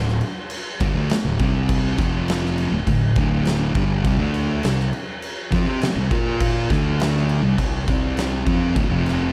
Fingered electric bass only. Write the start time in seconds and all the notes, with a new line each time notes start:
Already playing: D1
0.81 G1
0.95 D2
1.10 muted fingered electric bass stroke
1.25 D1
1.40 C2
1.98 F1
2.72 D1
2.87 D1
3.16 D1
3.75 G1
4.05 C2
4.20 D2
4.64 C2
5.52 F2
5.64 C3
5.80 muted fingered electric bass stroke
5.95 C2
6.11 A#2
6.70 D2
7.42 C2
7.59 C2
7.88 C2
8.46 F2
8.76 D1
8.89 F1